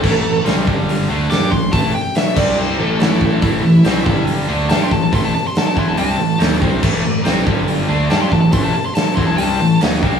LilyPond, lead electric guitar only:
\new Staff \with { instrumentName = "Lead electric guitar" } { \time 4/4 \key a \minor \tempo 4 = 141 a'4 r2 d'''8 c'''8 | a''8 g''8 e''8 d''8 c''8 a'8 e'4~ | e'2 r4 a''16 c'''16 a''16 a''16 | c'''16 a''16 a''16 c'''16 a''16 a''16 c'''16 a''16 a''4 r4 |
r2. a''16 c'''16 a''16 a''16 | c'''16 a''16 a''16 c'''16 a''16 a''16 c'''16 a''16 a''4 r4 | }